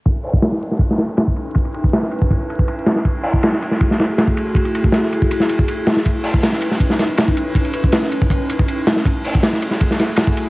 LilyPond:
<<
  \new Staff \with { instrumentName = "Ambient pad" } { \time 4/4 \key cis \minor \tempo 4 = 160 <cis' dis' e' b'>1~ | <cis' dis' e' b'>1 | <a fis' gis'>1~ | <a fis' gis'>1 |
<cis' dis' b'>1~ | <cis' dis' b'>1 | <a e' fis' gis'>1 | }
  \new DrumStaff \with { instrumentName = "Drums" } \drummode { \time 4/4 <bd cymr>8 hho16 bd16 <cymr sn>16 sn16 cymr16 sn16 <bd cymr>16 sn16 <cymr sn>8 <cymr sn>16 bd16 cymr8 | <bd cymr>16 cymr16 cymr16 bd16 <cymr sn>16 sn16 cymr16 bd16 <bd cymr>8 cymr16 bd16 cymr8 <cymr sn>16 sn16 | <bd cymr>8 hho16 bd16 <cymr sn>16 sn16 cymr16 sn16 <bd cymr>16 sn16 <cymr sn>8 <cymr sn>16 bd16 cymr8 | <bd cymr>16 cymr16 cymr16 bd16 <cymr sn>16 sn16 cymr16 bd16 cymr16 sn16 cymr16 bd16 cymr8 <cymr sn>16 sn16 |
<bd cymr>8 hho16 bd16 <cymr sn>16 sn16 cymr16 sn16 <bd cymr>16 sn16 <cymr sn>8 <cymr sn>16 bd16 cymr8 | <bd cymr>16 cymr16 cymr16 bd16 <cymr sn>16 sn16 cymr16 bd16 <bd cymr>8 cymr16 bd16 cymr8 <cymr sn>16 sn16 | <bd cymr>8 hho16 bd16 <cymr sn>16 sn16 cymr16 sn16 <bd cymr>16 sn16 <cymr sn>8 <cymr sn>16 bd16 cymr8 | }
>>